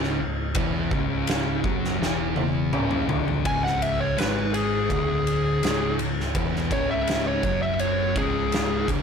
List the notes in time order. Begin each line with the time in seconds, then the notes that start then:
Already playing: C#1 C#2 C#3
0.04 snare
0.20 C#1 C#2
0.55 E1 E2 E3, kick, ride bell
0.91 C#1 C#2 C#3, kick
1.27 snare, ride bell
1.64 F#1 F#2 F#3, kick
1.85 snare
2.00 E1 E2 E3, snare
2.36 high tom
2.73 C#1 C#2 C#3, mid tom
2.91 mid tom
3.08 D1 D2 D3, floor tom
3.28 floor tom
3.45 C#1 C#2 C#3 G#5, kick, ride
3.64 F#5, snare
3.82 E5, ride
4.00 C#5
4.17 G#1 G#2 G#3 B4, snare, ride
4.54 G#4, ride
4.90 D1 D2 D3, kick, ride
5.27 ride
5.63 C#1 C#2 C#3, snare, ride
5.99 C#1 C#2, ride
6.21 snare
6.35 E1 E2 E3, kick, ride
6.56 snare
6.71 C#1 C#2 C#3 C#5, kick, ride
6.91 E5
7.07 snare, ride
7.27 C#5
7.43 F#1 F#2 F#3, kick, ride
7.62 E5
7.79 C#5, ride
8.16 C#1 C#2 C#3 G#4, kick, ride
8.52 snare, ride
8.88 D1 D2 D3, kick, ride